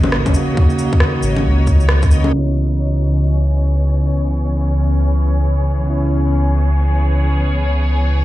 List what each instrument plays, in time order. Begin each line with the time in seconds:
Already playing: detuned saw bass G#1, tine electric piano C#3 A#3 F#4, string section D#3 A#3 F#4 C#5, synth texture D#4 D#5
0.04 low bongo
0.12 detuned saw bass G#1, cross-stick
0.26 kick, low bongo, shaker
0.33 tine electric piano C#3 A#3, shaker
0.37 tine electric piano F#4
0.53 tine electric piano C#3 A#3
0.57 tine electric piano F#4, kick
0.70 shaker
0.79 shaker
0.93 kick
1.00 cross-stick
1.23 detuned saw bass G#1, shaker
1.36 low bongo
1.45 detuned saw bass C#2
1.67 kick, shaker
1.80 shaker
1.89 cross-stick
2.02 kick, shaker
2.09 tine electric piano C#3 A#3 F#4, shaker
2.24 low bongo
2.29 tine electric piano C#3 B3
2.33 detuned saw bass C#2, string section E3, synth texture C#4 C#5, tine electric piano E4
2.81 string section B3
3.03 string section G#4
5.82 tine electric piano C#3 B3
5.90 tine electric piano E4